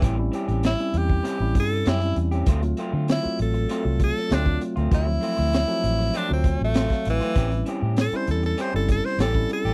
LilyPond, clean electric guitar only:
\new Staff \with { instrumentName = "Clean electric guitar" } { \time 4/4 \key d \major \tempo 4 = 98 <e bis cis' g'>16 r16 <e bis cis' g'>16 <bis cis' g'>16 r4 <e bis cis' g'>16 r8. <e bis cis' g'>16 r8 <bis cis' g'>16 | <fis a c' eis'>16 r16 <fis a c' eis'>16 <a c' eis'>16 r4 <fis a c' eis'>16 r8. <fis a c' eis'>16 r8 <a c' eis'>16 | <fis a c' eis'>16 r16 <fis a c' eis'>16 <a c' eis'>16 r4 <fis a c' eis'>16 r8. <fis a c' eis'>16 r8 <a c' eis'>16 | <e bis cis' g'>16 r16 <e bis cis' g'>16 <bis cis' g'>16 r4 <e bis cis' g'>16 r8. <e bis cis' g'>16 r8 <bis cis' g'>16 | }